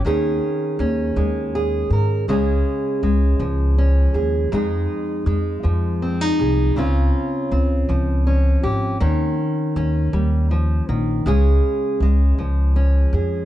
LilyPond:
<<
  \new Staff \with { instrumentName = "Steel-string acoustic guitar" } { \time 6/8 \key des \lydian \tempo 4. = 53 << { <des' aes'>4 des'4 aes'8 bes'8 | <aes des' aes'>4 aes4 des'8 aes'8 | <aes ees' aes'>4 aes4 c'16 ees'16 aes'8 | <c' des' f'>4 c'4 des'8 g'8 |
des'4 des'2 | <aes des' aes'>4 aes4 des'8 aes'8 | } \\ { ees4. aes4. | des4. f4. | f,4. f4. | des4. f4. |
ees4. g8 f8 ees8 | des4. f4. | } >> }
  \new Staff \with { instrumentName = "Upright bass" } { \clef bass \time 6/8 \key des \lydian ees,8 r8 ees,8 ees,4 aes,8 | des,8 r8 des,8 des,4 ees,8 | f,8 r8 f,8 f,4 c,8 | des,8 r8 des,8 des,4 aes,,8 |
ees,8 r8 ees,8 ees,4 bes,,8 | des,8 r8 des,8 des,4 f,8 | }
>>